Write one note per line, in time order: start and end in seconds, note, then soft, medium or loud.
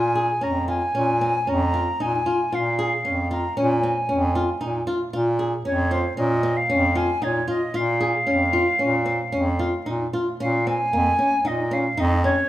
0.00 0.33 A#2 medium
0.00 0.44 G#5 medium
0.15 0.29 G#4 medium
0.41 0.86 F2 medium
0.41 0.55 C#4 medium
0.41 0.68 A#5 medium
0.68 0.82 F4 medium
0.68 1.50 G#5 medium
0.95 1.38 A#2 medium
0.95 1.09 C#4 medium
1.21 1.35 C4 medium
1.47 1.91 F2 medium
1.47 1.61 C#4 medium
1.47 2.03 A#5 medium
1.74 1.87 F4 medium
2.00 2.22 A#2 medium
2.00 2.14 D#4 medium
2.00 2.56 G#5 medium
2.26 2.40 F4 medium
2.52 2.96 A#2 medium
2.52 2.66 F4 medium
2.52 3.31 F5 medium
2.79 2.92 G#4 medium
3.05 3.47 F2 medium
3.05 3.18 C#4 medium
3.31 3.44 F4 medium
3.31 3.55 A#5 medium
3.57 3.99 A#2 medium
3.57 3.70 C#4 medium
3.57 4.83 G#5 medium
3.83 3.97 C4 medium
4.09 4.51 F2 medium
4.09 4.22 C#4 medium
4.35 4.49 F4 medium
4.61 4.82 A#2 medium
4.61 4.74 D#4 medium
4.87 5.00 F4 medium
5.13 5.56 A#2 medium
5.13 5.27 F4 medium
5.39 5.53 G#4 medium
5.65 6.08 F2 medium
5.65 5.79 C#4 medium
5.65 5.93 C#5 medium
5.91 6.05 F4 medium
5.91 6.16 C5 medium
6.17 6.60 A#2 medium
6.17 6.31 C#4 medium
6.17 6.58 D#5 medium
6.43 6.57 C4 medium
6.56 6.98 F5 medium
6.69 7.12 F2 medium
6.69 6.83 C#4 medium
6.95 7.09 F4 medium
6.95 7.24 G#5 medium
7.22 7.43 A#2 medium
7.22 7.35 D#4 medium
7.22 7.48 C#5 medium
7.48 7.61 F4 medium
7.48 7.77 D#5 medium
7.74 8.17 A#2 medium
7.74 7.88 F4 medium
7.74 9.87 F5 medium
8.00 8.14 G#4 medium
8.27 8.70 F2 medium
8.27 8.40 C#4 medium
8.53 8.67 F4 medium
8.79 9.22 A#2 medium
8.79 8.93 C#4 medium
9.06 9.20 C4 medium
9.32 9.76 F2 medium
9.32 9.46 C#4 medium
9.59 9.73 F4 medium
9.86 10.08 A#2 medium
9.86 10.00 D#4 medium
10.13 10.27 F4 medium
10.40 10.83 A#2 medium
10.40 10.54 C#4 medium
10.40 10.68 F5 medium
10.66 10.80 C4 medium
10.66 11.48 G#5 medium
10.92 11.14 F2 medium
10.92 11.07 A#3 medium
11.19 11.32 C#4 medium
11.44 11.88 A#2 medium
11.44 11.59 D#4 medium
11.44 11.74 D#5 medium
11.71 11.85 C#4 medium
11.71 12.01 F5 medium
11.97 12.40 F2 loud
11.97 12.11 D#4 medium
11.97 12.23 D#5 medium
12.24 12.38 C#4 medium
12.24 12.49 C#5 medium